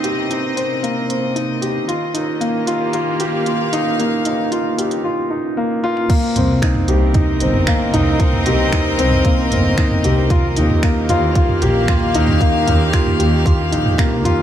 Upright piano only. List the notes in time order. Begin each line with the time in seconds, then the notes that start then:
Already playing: A#3 C4 D#4 G4
0.04 G4
0.30 D#4
0.56 C4
0.83 A#3
1.09 C4
1.35 D#4
1.62 G4
1.88 F4
2.14 D#4
2.40 A#3
2.67 F4
2.94 F4
3.20 G4
3.47 F4
3.73 D#4
4.00 A#3
4.26 D#4
4.52 F4
4.78 G4
5.04 F4
5.30 D#4
5.57 A#3
5.84 F4
6.10 A#3
6.36 C4
6.63 D#4
6.89 G4
7.15 D#4
7.41 C4
7.68 A#3
7.94 D#4
8.20 D#4
8.46 G4
8.72 D#4
8.98 C4
9.25 A#3
9.52 C4
9.78 D#4
10.04 G4
10.30 F4
10.57 D#4
10.84 A#3
11.10 F4
11.36 F4
11.62 G4
11.89 F4
12.15 D#4
12.41 A#3
12.67 D#4
12.93 F4
13.19 G4
13.45 F4
13.72 D#4
13.98 A#3
14.25 F4